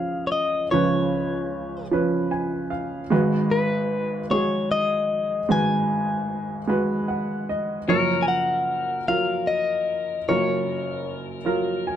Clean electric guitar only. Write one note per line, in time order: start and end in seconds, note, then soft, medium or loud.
0.00 0.27 F5 medium
0.27 0.31 C#5 soft
0.32 0.69 D#5 medium
0.71 1.87 C#5 medium
3.51 4.26 B4 medium
4.31 4.71 C#5 medium
4.72 5.51 D#5 medium
5.52 7.06 G#5 medium
7.90 8.23 C#5 medium
8.23 8.28 G#5 soft
8.28 9.08 F#5 medium
9.08 9.49 F5 medium
9.47 10.28 D#5 medium
10.29 11.14 C#5 medium